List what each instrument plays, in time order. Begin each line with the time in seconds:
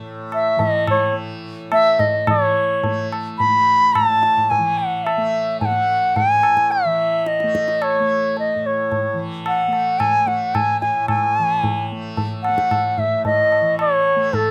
Already playing: tanpura A2 E3 A3
0.32 bansuri E5, tabla na
0.56 tanpura E3, tabla tin, tabla ge
0.62 bansuri D#5
0.87 bansuri C#5, tabla na, tabla ge
1.12 tanpura A3
1.72 tanpura A3, bansuri E5, tabla na
1.99 bansuri D#5, tabla tin, tabla ge
2.27 tanpura E3, bansuri C#5, tabla na, tabla ge
2.83 tanpura A3, tabla tin, tabla ge
3.12 tabla na
3.38 bansuri B5, tabla tin, tabla ge
3.44 tanpura A3
3.94 bansuri A5, tabla na, tabla ge
4.00 tanpura A2
4.23 tabla te
4.38 tabla ge
4.50 bansuri G#5, tabla tin, tabla ge
4.58 tanpura E3
4.78 bansuri F#5
4.97 bansuri F#5
5.04 bansuri E5, tabla na
5.17 tanpura A3
5.61 bansuri G#5, tabla tin, tabla ge
5.65 bansuri F#5
5.71 tanpura A3
6.16 bansuri G#5, tabla tin, tabla ge
6.26 tanpura A2
6.43 tabla na
6.57 tabla ke
6.70 bansuri E5, tabla tin
6.84 tanpura E3
7.26 bansuri D#5, tabla te
7.40 tanpura A3, tabla te
7.55 tabla ke
7.68 tabla te
7.82 bansuri C#5, tabla na
8.00 tanpura A3
8.37 bansuri D#5, tabla tin
8.56 tanpura A2
8.66 bansuri C#5
8.92 tabla tin, tabla ge
9.13 tanpura E3
9.46 bansuri F#5, tabla na
9.68 tanpura A3
9.73 tabla na
9.99 bansuri G#5, tabla na, tabla ge
10.26 tanpura A3, bansuri F#5, tabla te
10.55 bansuri G#5, tabla na, tabla ge
10.81 tanpura A2, bansuri G#5, tabla te
11.08 bansuri G#5, tabla na, tabla ge
11.38 tanpura E3
11.64 tabla tin, tabla ge
11.92 tanpura A3
12.17 tabla tin, tabla ge
12.43 bansuri F#5, tabla na
12.48 tanpura A3
12.58 tabla ke
12.71 tabla na, tabla ge
12.98 bansuri E5, tabla ge
13.03 tanpura A2
13.25 bansuri D#5, tabla tin, tabla ge
13.52 tabla na
13.61 tanpura E3
13.79 bansuri C#5, tabla na
14.16 tanpura A3
14.33 bansuri A4, tabla tin, tabla ge